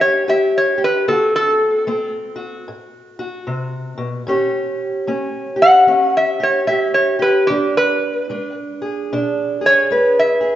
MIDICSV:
0, 0, Header, 1, 3, 480
1, 0, Start_track
1, 0, Tempo, 803213
1, 637, Time_signature, 4, 2, 24, 8
1, 6308, End_track
2, 0, Start_track
2, 0, Title_t, "Resonator guitar played with a steel bar"
2, 0, Program_c, 0, 25
2, 7, Note_on_c, 0, 73, 80
2, 158, Note_off_c, 0, 73, 0
2, 176, Note_on_c, 0, 76, 79
2, 322, Note_off_c, 0, 76, 0
2, 345, Note_on_c, 0, 73, 79
2, 486, Note_off_c, 0, 73, 0
2, 503, Note_on_c, 0, 71, 84
2, 645, Note_off_c, 0, 71, 0
2, 647, Note_on_c, 0, 69, 73
2, 797, Note_off_c, 0, 69, 0
2, 811, Note_on_c, 0, 69, 92
2, 1269, Note_off_c, 0, 69, 0
2, 3359, Note_on_c, 0, 78, 99
2, 3667, Note_off_c, 0, 78, 0
2, 3687, Note_on_c, 0, 76, 83
2, 3836, Note_off_c, 0, 76, 0
2, 3845, Note_on_c, 0, 73, 77
2, 3987, Note_on_c, 0, 76, 74
2, 3995, Note_off_c, 0, 73, 0
2, 4146, Note_off_c, 0, 76, 0
2, 4149, Note_on_c, 0, 73, 77
2, 4307, Note_off_c, 0, 73, 0
2, 4315, Note_on_c, 0, 71, 87
2, 4464, Note_on_c, 0, 67, 86
2, 4471, Note_off_c, 0, 71, 0
2, 4625, Note_off_c, 0, 67, 0
2, 4645, Note_on_c, 0, 71, 99
2, 5106, Note_off_c, 0, 71, 0
2, 5773, Note_on_c, 0, 73, 95
2, 6075, Note_off_c, 0, 73, 0
2, 6092, Note_on_c, 0, 76, 80
2, 6308, Note_off_c, 0, 76, 0
2, 6308, End_track
3, 0, Start_track
3, 0, Title_t, "Steel-string acoustic guitar"
3, 0, Program_c, 1, 25
3, 0, Note_on_c, 1, 52, 68
3, 0, Note_on_c, 1, 61, 66
3, 0, Note_on_c, 1, 67, 55
3, 0, Note_on_c, 1, 73, 67
3, 122, Note_off_c, 1, 52, 0
3, 160, Note_off_c, 1, 67, 0
3, 166, Note_on_c, 1, 57, 67
3, 168, Note_on_c, 1, 67, 65
3, 457, Note_off_c, 1, 67, 0
3, 464, Note_on_c, 1, 67, 57
3, 605, Note_off_c, 1, 57, 0
3, 617, Note_off_c, 1, 73, 0
3, 618, Note_off_c, 1, 61, 0
3, 620, Note_off_c, 1, 67, 0
3, 644, Note_on_c, 1, 50, 73
3, 646, Note_on_c, 1, 60, 64
3, 656, Note_on_c, 1, 66, 62
3, 1083, Note_off_c, 1, 50, 0
3, 1113, Note_off_c, 1, 60, 0
3, 1118, Note_on_c, 1, 57, 66
3, 1121, Note_on_c, 1, 60, 63
3, 1401, Note_off_c, 1, 66, 0
3, 1408, Note_on_c, 1, 66, 55
3, 1560, Note_off_c, 1, 57, 0
3, 1598, Note_off_c, 1, 60, 0
3, 1601, Note_on_c, 1, 45, 67
3, 1890, Note_off_c, 1, 66, 0
3, 1906, Note_on_c, 1, 66, 64
3, 2042, Note_off_c, 1, 45, 0
3, 2072, Note_on_c, 1, 48, 69
3, 2371, Note_off_c, 1, 48, 0
3, 2376, Note_on_c, 1, 47, 63
3, 2540, Note_off_c, 1, 66, 0
3, 2548, Note_off_c, 1, 47, 0
3, 2550, Note_on_c, 1, 45, 77
3, 2557, Note_on_c, 1, 61, 61
3, 2561, Note_on_c, 1, 67, 62
3, 2565, Note_on_c, 1, 73, 68
3, 2996, Note_off_c, 1, 45, 0
3, 3027, Note_off_c, 1, 61, 0
3, 3032, Note_on_c, 1, 57, 64
3, 3036, Note_on_c, 1, 61, 60
3, 3316, Note_off_c, 1, 67, 0
3, 3323, Note_on_c, 1, 67, 54
3, 3477, Note_off_c, 1, 57, 0
3, 3506, Note_off_c, 1, 61, 0
3, 3506, Note_on_c, 1, 52, 63
3, 3513, Note_on_c, 1, 61, 67
3, 3807, Note_off_c, 1, 67, 0
3, 3824, Note_on_c, 1, 67, 59
3, 3954, Note_off_c, 1, 52, 0
3, 3986, Note_on_c, 1, 57, 66
3, 3989, Note_off_c, 1, 67, 0
3, 3997, Note_on_c, 1, 67, 63
3, 4290, Note_off_c, 1, 67, 0
3, 4297, Note_on_c, 1, 67, 61
3, 4434, Note_off_c, 1, 57, 0
3, 4452, Note_off_c, 1, 61, 0
3, 4456, Note_off_c, 1, 67, 0
3, 4458, Note_off_c, 1, 73, 0
3, 4482, Note_on_c, 1, 52, 76
3, 4482, Note_on_c, 1, 62, 61
3, 4922, Note_off_c, 1, 52, 0
3, 4958, Note_on_c, 1, 56, 62
3, 4961, Note_off_c, 1, 62, 0
3, 4963, Note_on_c, 1, 62, 61
3, 5269, Note_on_c, 1, 68, 57
3, 5400, Note_off_c, 1, 56, 0
3, 5452, Note_off_c, 1, 62, 0
3, 5454, Note_on_c, 1, 62, 63
3, 5457, Note_on_c, 1, 47, 70
3, 5741, Note_off_c, 1, 68, 0
3, 5743, Note_on_c, 1, 68, 57
3, 5890, Note_off_c, 1, 47, 0
3, 5920, Note_on_c, 1, 56, 65
3, 5927, Note_on_c, 1, 71, 69
3, 6217, Note_off_c, 1, 68, 0
3, 6219, Note_on_c, 1, 68, 60
3, 6308, Note_off_c, 1, 56, 0
3, 6308, Note_off_c, 1, 62, 0
3, 6308, Note_off_c, 1, 68, 0
3, 6308, Note_off_c, 1, 71, 0
3, 6308, End_track
0, 0, End_of_file